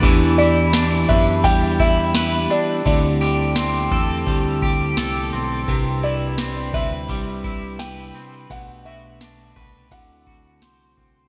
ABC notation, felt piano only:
X:1
M:4/4
L:1/8
Q:1/4=85
K:Em
V:1 name="Felt piano"
z d2 e g e2 d | d6 z2 | z d2 e3 g2 | f e2 z f3 z |]